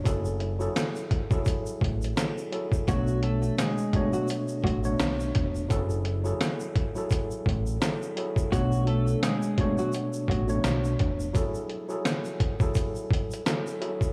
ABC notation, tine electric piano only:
X:1
M:4/4
L:1/16
Q:"Swing 16ths" 1/4=85
K:F#m
V:1 name="Tine electric piano"
[F,EGA]3 [F,EGA]4 [F,EGA]4- [F,EGA] [F,EGA]2 [F,EGA]2 | [B,,A,Dc]6 [B,,A,Dc]4- [B,,A,Dc] [B,,A,Dc]4- [B,,A,Dc] | [F,EGA]3 [F,EGA]4 [F,EGA]4- [F,EGA] [F,EGA]2 [F,EGA]2 | [B,,A,Dc]6 [B,,A,Dc]4- [B,,A,Dc] [B,,A,Dc]4- [B,,A,Dc] |
[F,EGA]3 [F,EGA]4 [F,EGA]4- [F,EGA] [F,EGA]2 [F,EGA]2 |]